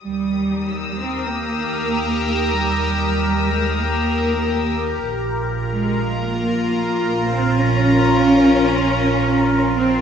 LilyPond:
<<
  \new Staff \with { instrumentName = "Violin section" } { \time 4/4 \key ees \mixolydian \tempo 4 = 96 << { r4 e'''2.~ | e'''2.~ e'''8 r8 | r1 | r1 | } \\ { ees'''1~ | ees'''2.~ ees'''8 r8 | r1 | r1 | } >> }
  \new Staff \with { instrumentName = "Ambient pad" } { \time 4/4 \key ees \mixolydian <g' bes' bes''>1~ | <g' bes' bes''>1 | <f' bes' bes''>1~ | <f' bes' bes''>1 | }
  \new Staff \with { instrumentName = "Cello section" } { \time 4/4 \key ees \mixolydian g4. c'8 bes2 | g4. aes8 bes4. r8 | r4 aes4 bes4. c'8 | des'2.~ des'8 c'8 | }
  \new Staff \with { instrumentName = "Double bass section" } { \clef bass \time 4/4 \key ees \mixolydian ees,1~ | ees,1 | bes,,1~ | bes,,1 | }
>>